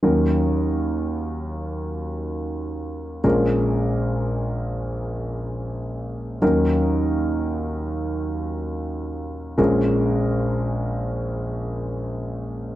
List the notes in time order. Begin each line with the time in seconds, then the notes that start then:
0.03 D#2 D#3 F#3 C#4 D#4 A#4
3.24 A#1 A#2 G#3 C#4 F4 A#4
6.42 D#2 D#3 F#3 C#4 D#4 A#4
9.58 A#1 A#2 G#3 C#4 F4 A#4